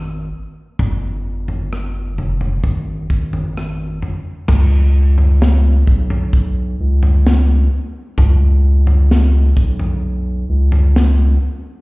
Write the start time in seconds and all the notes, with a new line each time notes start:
Already playing: G#1
0.79 G1, kick, floor tom
1.48 floor tom
1.73 cross-stick
2.18 F1, floor tom
2.41 floor tom
2.64 G#1, kick, floor tom
3.10 G#1, kick
3.33 floor tom
3.57 cross-stick
4.02 floor tom
4.48 C#2, kick, floor tom, crash
5.18 floor tom
5.42 snare
5.87 B1, kick
6.10 floor tom
6.33 kick
6.80 C#2
7.03 floor tom
7.27 snare
8.18 C#2, kick, floor tom
8.87 floor tom
9.11 snare
9.57 B1, kick
9.79 floor tom
10.49 C#2
10.72 floor tom
10.96 snare